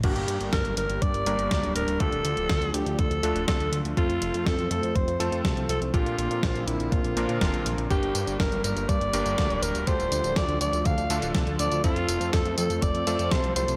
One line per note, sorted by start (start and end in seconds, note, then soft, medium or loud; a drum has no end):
0.04 0.13 G1 loud
0.04 1.24 G2 medium
0.04 1.98 G3 medium
0.04 1.24 A#3 medium
0.04 1.99 A#3 medium
0.04 1.24 D4 medium
0.04 3.93 D4 medium
0.04 1.24 G4 medium
0.04 0.50 G4 medium
0.04 1.24 A#4 medium
0.04 kick loud
0.04 closed hi-hat medium
0.04 crash medium
0.16 0.26 G1 medium
0.16 closed hi-hat soft
0.28 0.38 G2 medium
0.28 closed hi-hat medium
0.40 0.50 G1 medium
0.40 closed hi-hat soft
0.53 0.63 G1 loud
0.53 0.76 A#4 loud
0.53 kick loud
0.53 snare loud
0.53 closed hi-hat medium
0.65 0.75 G1 medium
0.65 closed hi-hat soft
0.77 0.87 G1 medium
0.77 1.03 A#4 loud
0.77 closed hi-hat medium
0.89 0.99 G1 medium
0.89 closed hi-hat soft
1.02 1.12 G2 medium
1.02 1.75 D5 loud
1.02 kick loud
1.02 closed hi-hat medium
1.14 1.24 G1 medium
1.14 closed hi-hat soft
1.26 1.36 G1 medium
1.26 1.97 G2 medium
1.26 1.97 A#3 medium
1.26 1.98 D4 medium
1.26 1.97 G4 medium
1.26 1.97 A#4 loud
1.26 closed hi-hat medium
1.38 1.48 G1 medium
1.38 closed hi-hat soft
1.51 1.61 D2 loud
1.51 kick loud
1.51 snare loud
1.51 closed hi-hat medium
1.63 1.73 D1 medium
1.63 closed hi-hat soft
1.75 1.85 D1 medium
1.75 2.02 A#4 loud
1.75 closed hi-hat loud
1.88 1.98 D1 medium
1.88 closed hi-hat soft
2.00 2.10 D2 loud
2.00 3.21 D3 medium
2.00 3.95 F3 medium
2.00 3.20 A3 medium
2.00 5.90 A3 medium
2.00 3.20 D4 medium
2.00 3.20 F4 medium
2.00 3.20 G4 medium
2.00 2.76 A4 loud
2.00 kick loud
2.00 closed hi-hat medium
2.12 2.22 D1 medium
2.12 closed hi-hat soft
2.25 2.35 D2 medium
2.25 closed hi-hat medium
2.37 2.47 D1 medium
2.37 closed hi-hat soft
2.49 2.59 D2 loud
2.49 kick loud
2.49 snare loud
2.49 closed hi-hat medium
2.61 2.71 D2 medium
2.61 closed hi-hat soft
2.74 2.84 D2 medium
2.74 3.00 G4 medium
2.74 closed hi-hat medium
2.86 2.96 D2 medium
2.86 closed hi-hat soft
2.99 3.09 D2 loud
2.99 3.47 A4 medium
2.99 kick loud
2.99 closed hi-hat medium
3.11 3.21 D2 medium
3.11 closed hi-hat soft
3.23 3.33 D2 medium
3.23 3.45 D3 medium
3.23 3.45 A3 medium
3.23 3.45 D4 medium
3.23 3.45 F4 medium
3.23 3.45 A4 loud
3.23 closed hi-hat medium
3.35 3.45 D1 medium
3.35 closed hi-hat soft
3.48 3.58 C2 loud
3.48 3.94 D3 medium
3.48 3.94 A3 medium
3.48 3.94 D4 medium
3.48 3.94 F4 medium
3.48 3.94 A4 medium
3.48 3.82 A4 medium
3.48 kick loud
3.48 snare loud
3.48 closed hi-hat medium
3.60 3.70 D2 medium
3.60 closed hi-hat soft
3.72 3.82 D2 medium
3.72 closed hi-hat medium
3.85 3.95 D2 medium
3.85 closed hi-hat soft
3.97 4.07 F2 loud
3.97 5.92 F3 medium
3.97 5.17 A3 medium
3.97 5.17 C4 medium
3.97 5.92 C4 medium
3.97 5.17 F4 medium
3.97 4.48 F4 medium
3.97 5.17 A4 medium
3.97 kick loud
3.97 closed hi-hat medium
4.09 4.19 F2 medium
4.09 closed hi-hat soft
4.22 4.32 F1 medium
4.22 closed hi-hat medium
4.34 4.44 F2 medium
4.34 closed hi-hat soft
4.46 4.56 F2 loud
4.46 4.71 A4 medium
4.46 kick loud
4.46 snare loud
4.46 closed hi-hat medium
4.58 4.68 F2 medium
4.58 closed hi-hat soft
4.71 4.81 F2 medium
4.71 4.97 A4 medium
4.71 closed hi-hat medium
4.83 4.93 F2 medium
4.83 closed hi-hat soft
4.95 5.05 F1 medium
4.95 5.42 C5 medium
4.95 kick loud
4.95 closed hi-hat medium
5.08 5.17 F2 medium
5.08 closed hi-hat soft
5.20 5.30 F2 medium
5.20 5.91 A3 medium
5.20 5.91 C4 medium
5.20 5.91 F4 medium
5.20 5.91 A4 loud
5.20 closed hi-hat medium
5.32 5.42 F2 medium
5.32 closed hi-hat soft
5.45 5.54 C2 loud
5.45 kick loud
5.45 snare loud
5.45 closed hi-hat medium
5.57 5.67 C2 medium
5.57 closed hi-hat soft
5.69 5.79 C2 medium
5.69 5.81 A4 medium
5.69 closed hi-hat medium
5.81 5.91 C2 medium
5.81 closed hi-hat soft
5.94 6.04 A#1 loud
5.94 7.14 A#2 medium
5.94 7.89 D3 medium
5.94 7.89 A#3 medium
5.94 7.89 C4 medium
5.94 7.14 C4 medium
5.94 7.14 D4 medium
5.94 7.14 F4 medium
5.94 6.69 F4 medium
5.94 7.14 G4 medium
5.94 kick loud
5.94 closed hi-hat medium
6.06 6.16 A#2 medium
6.06 closed hi-hat soft
6.18 6.28 A#1 medium
6.18 closed hi-hat medium
6.31 6.41 A#2 medium
6.31 closed hi-hat soft
6.43 6.53 A#1 loud
6.43 kick loud
6.43 snare loud
6.43 closed hi-hat medium
6.55 6.65 A#1 medium
6.55 closed hi-hat soft
6.67 6.77 A#1 medium
6.67 6.94 E4 medium
6.67 closed hi-hat medium
6.80 6.90 A#1 medium
6.80 closed hi-hat soft
6.92 7.02 A#1 loud
6.92 7.41 F4 medium
6.92 kick loud
6.92 closed hi-hat medium
7.04 7.14 A#1 medium
7.04 closed hi-hat soft
7.16 7.26 A#1 medium
7.16 7.38 A#2 medium
7.16 7.38 C4 medium
7.16 7.38 D4 medium
7.16 7.38 F4 medium
7.16 7.39 A#4 loud
7.16 closed hi-hat medium
7.29 7.39 A#2 medium
7.29 closed hi-hat soft
7.41 7.51 F1 loud
7.41 7.88 A#2 medium
7.41 7.88 C4 medium
7.41 7.88 D4 medium
7.41 7.88 F4 medium
7.41 7.76 F4 medium
7.41 7.88 A#4 medium
7.41 kick loud
7.41 snare loud
7.41 closed hi-hat medium
7.53 7.63 A#1 medium
7.53 closed hi-hat soft
7.65 7.76 A#1 medium
7.65 closed hi-hat medium
7.78 7.88 A#1 medium
7.78 closed hi-hat soft
7.91 8.00 G1 loud
7.91 9.11 G2 medium
7.91 9.85 G3 medium
7.91 9.11 A#3 medium
7.91 9.86 A#3 medium
7.91 9.11 D4 medium
7.91 11.80 D4 medium
7.91 9.11 G4 medium
7.91 8.36 G4 loud
7.91 9.11 A#4 medium
7.91 kick loud
7.91 closed hi-hat medium
7.91 tambourine soft
8.03 8.12 G1 medium
8.03 closed hi-hat soft
8.15 8.25 G2 medium
8.15 closed hi-hat medium
8.15 tambourine medium
8.27 8.37 G1 medium
8.27 closed hi-hat soft
8.27 tambourine soft
8.39 8.50 G1 loud
8.39 8.62 A#4 medium
8.39 kick loud
8.39 snare loud
8.39 closed hi-hat medium
8.39 tambourine soft
8.52 8.62 G1 medium
8.52 closed hi-hat soft
8.64 8.74 G1 medium
8.64 8.90 A#4 medium
8.64 closed hi-hat medium
8.64 tambourine medium
8.76 8.86 G1 medium
8.76 closed hi-hat soft
8.76 tambourine soft
8.89 8.99 G2 loud
8.89 9.64 D5 loud
8.89 kick loud
8.89 closed hi-hat medium
8.89 tambourine soft
9.01 9.11 G1 medium
9.01 closed hi-hat soft
9.13 9.23 G1 medium
9.13 9.84 G2 loud
9.13 9.84 A#3 medium
9.13 9.84 D4 medium
9.13 9.84 G4 medium
9.13 9.84 A#4 loud
9.13 closed hi-hat medium
9.13 tambourine medium
9.25 9.35 G1 medium
9.25 closed hi-hat soft
9.25 tambourine soft
9.38 9.48 D2 loud
9.38 kick loud
9.38 snare loud
9.38 closed hi-hat medium
9.38 tambourine soft
9.50 9.60 D1 medium
9.50 closed hi-hat soft
9.62 9.72 D1 loud
9.62 9.89 A#4 medium
9.62 closed hi-hat medium
9.62 tambourine medium
9.75 9.85 D1 medium
9.75 closed hi-hat soft
9.75 tambourine soft
9.87 9.97 D2 loud
9.87 11.07 D3 medium
9.87 13.77 F3 medium
9.87 11.82 A3 medium
9.87 11.07 A3 medium
9.87 11.07 D4 medium
9.87 11.07 F4 medium
9.87 11.07 G4 medium
9.87 10.38 C5 loud
9.87 kick loud
9.87 closed hi-hat medium
9.87 tambourine soft
9.99 10.09 D1 medium
9.99 closed hi-hat soft
9.99 tambourine soft
10.12 10.22 D2 medium
10.12 closed hi-hat medium
10.12 tambourine medium
10.24 10.34 D1 medium
10.24 closed hi-hat soft
10.24 tambourine soft
10.36 10.46 D2 loud
10.36 10.61 D5 loud
10.36 kick loud
10.36 snare loud
10.36 closed hi-hat medium
10.36 tambourine soft
10.48 10.58 D2 medium
10.48 closed hi-hat soft
10.61 10.71 D2 medium
10.61 10.87 D5 loud
10.61 closed hi-hat medium
10.61 tambourine medium
10.73 10.83 D2 medium
10.73 closed hi-hat soft
10.73 tambourine soft
10.85 10.95 D2 loud
10.85 11.32 F5 loud
10.85 kick loud
10.85 closed hi-hat medium
10.85 tambourine soft
10.98 11.08 D2 medium
10.98 closed hi-hat soft
10.98 tambourine soft
11.10 11.20 D2 medium
11.10 11.32 D3 medium
11.10 11.32 A3 medium
11.10 11.32 D4 medium
11.10 11.32 F4 medium
11.10 11.32 A4 loud
11.10 closed hi-hat medium
11.10 tambourine medium
11.22 11.32 D1 medium
11.22 closed hi-hat soft
11.22 tambourine soft
11.35 11.45 C2 loud
11.35 11.81 D3 medium
11.35 11.81 A3 medium
11.35 11.81 D4 medium
11.35 11.81 F4 medium
11.35 11.81 A4 medium
11.35 kick loud
11.35 snare loud
11.35 closed hi-hat medium
11.35 tambourine soft
11.47 11.57 D2 medium
11.47 closed hi-hat soft
11.59 11.69 D2 loud
11.59 11.83 D5 loud
11.59 closed hi-hat medium
11.59 tambourine medium
11.72 11.81 D2 medium
11.72 closed hi-hat soft
11.72 tambourine soft
11.84 11.94 F2 loud
11.84 13.77 A3 medium
11.84 13.04 A3 medium
11.84 13.77 C4 medium
11.84 13.04 C4 medium
11.84 13.04 F4 medium
11.84 12.35 F4 loud
11.84 13.04 A4 medium
11.84 kick loud
11.84 closed hi-hat medium
11.84 tambourine soft
11.96 12.06 F2 medium
11.96 closed hi-hat soft
12.08 12.18 F1 medium
12.08 closed hi-hat medium
12.08 tambourine medium
12.21 12.31 F2 medium
12.21 closed hi-hat soft
12.21 tambourine soft
12.33 12.43 F2 loud
12.33 12.57 A4 loud
12.33 kick loud
12.33 snare loud
12.33 closed hi-hat medium
12.33 tambourine soft
12.46 12.55 F2 medium
12.46 closed hi-hat soft
12.58 12.68 F2 medium
12.58 12.84 A4 medium
12.58 closed hi-hat loud
12.58 tambourine medium
12.70 12.80 F2 medium
12.70 closed hi-hat soft
12.70 tambourine soft
12.82 12.92 F1 loud
12.82 13.33 D5 loud
12.82 kick loud
12.82 closed hi-hat medium
12.82 tambourine soft
12.95 13.04 F2 medium
12.95 closed hi-hat soft
13.07 13.17 F2 medium
13.07 13.77 A3 medium
13.07 13.77 C4 medium
13.07 13.77 F4 medium
13.07 13.77 A4 loud
13.07 closed hi-hat medium
13.07 tambourine medium
13.19 13.29 F2 medium
13.19 closed hi-hat soft
13.19 tambourine soft
13.31 13.41 C2 loud
13.31 13.56 C5 loud
13.31 kick loud
13.31 snare loud
13.31 closed hi-hat medium
13.31 tambourine soft
13.44 13.54 C2 medium
13.44 closed hi-hat soft
13.56 13.66 C2 loud
13.56 13.77 C5 loud
13.56 closed hi-hat medium
13.56 tambourine medium
13.68 13.77 C2 medium
13.68 closed hi-hat soft
13.68 tambourine soft